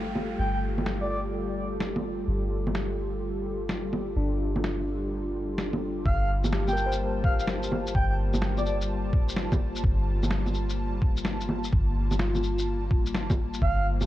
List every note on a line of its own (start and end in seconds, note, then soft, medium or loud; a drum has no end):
0.00 0.37 G1 medium
0.00 6.01 G3 medium
0.00 6.08 A3 medium
0.00 6.01 F4 medium
0.00 6.01 G4 medium
0.00 6.01 A4 medium
0.00 downlifter medium
0.15 low bongo soft
0.39 2.26 G1 medium
0.39 0.48 G5 medium
0.54 0.59 G5 medium
0.78 low bongo soft
0.86 snare medium
1.01 1.06 D5 medium
1.10 1.19 D5 medium
1.80 snare loud
1.96 low bongo medium
2.28 4.15 G1 medium
2.67 low bongo soft
2.75 snare loud
3.69 snare loud
3.93 low bongo soft
4.16 6.04 G1 medium
4.16 5.15 D4 medium
4.37 5.29 F4 soft
4.56 low bongo soft
4.64 snare loud
5.58 snare loud
5.73 low bongo medium
6.05 7.93 G1 medium
6.05 13.57 G3 medium
6.05 14.06 A#3 medium
6.05 13.57 F4 medium
6.05 6.31 F5 medium
6.05 13.57 A5 medium
6.05 kick loud
6.44 low bongo medium
6.44 shaker medium
6.53 7.52 G4 medium
6.53 snare loud
6.67 6.92 G5 medium
6.67 low bongo soft
6.67 shaker soft
6.73 7.66 A#4 medium
6.73 shaker soft
6.86 7.80 C5 medium
6.92 shaker medium
7.24 7.34 F5 medium
7.24 kick loud
7.40 7.45 F5 medium
7.40 shaker medium
7.47 snare loud
7.63 shaker soft
7.72 low bongo medium
7.87 shaker medium
7.95 9.82 G1 medium
7.95 8.04 G5 medium
7.95 kick loud
8.10 8.15 G5 medium
8.34 low bongo medium
8.34 shaker medium
8.42 snare loud
8.57 8.63 D5 medium
8.57 low bongo soft
8.57 shaker soft
8.66 8.76 D5 medium
8.66 shaker soft
8.81 shaker medium
9.13 kick loud
9.29 shaker medium
9.37 snare loud
9.52 kick loud
9.52 low bongo medium
9.52 shaker soft
9.76 shaker medium
9.84 11.71 G1 medium
9.84 kick loud
10.23 low bongo medium
10.23 shaker medium
10.31 snare loud
10.46 low bongo soft
10.46 shaker soft
10.54 shaker soft
10.70 shaker medium
11.02 kick loud
11.17 shaker medium
11.25 snare loud
11.41 shaker soft
11.49 low bongo soft
11.64 shaker medium
11.73 13.60 G1 medium
11.73 kick loud
12.11 low bongo medium
12.11 shaker medium
12.19 13.19 F4 medium
12.19 snare loud
12.35 low bongo soft
12.35 shaker soft
12.43 shaker soft
12.59 shaker medium
12.91 kick loud
13.06 shaker medium
13.15 snare loud
13.30 kick loud
13.30 low bongo medium
13.30 shaker soft
13.54 shaker medium
13.61 14.06 G1 medium
13.61 14.06 G3 medium
13.61 14.06 F4 medium
13.61 14.06 C5 medium
13.61 13.87 F5 medium
13.61 kick loud
14.01 low bongo medium
14.01 shaker medium